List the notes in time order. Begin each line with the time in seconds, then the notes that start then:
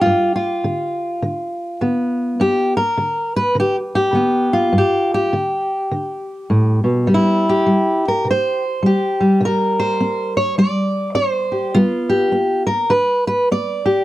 Already playing: G4
0.01 F4
0.06 G2
0.36 F4
0.64 D3
1.22 D3
1.81 D3 B3
2.40 G2 G4
2.77 A#4
2.97 D3
3.36 B4
3.55 D3
3.60 G4
3.95 G4
4.13 D3 B3
4.53 F4
4.72 G2
4.78 G4
5.14 G4
5.33 D3
5.91 D3
6.50 A2
6.84 B2
7.07 C3 G3
7.14 E4
7.49 G4
7.66 G3
8.08 A#4
8.24 C3
8.31 C5
8.83 G3 G4
9.20 G3
9.41 C3
9.45 A#4
9.79 C5
10.00 C4
10.37 C#5
10.58 G3 D5
11.15 C4 C5
11.52 G4
11.74 G3 B3 F4
12.09 G4
12.32 B3
12.67 A#4
12.90 D3 B4
13.27 B4
13.51 B3 D5
13.86 G4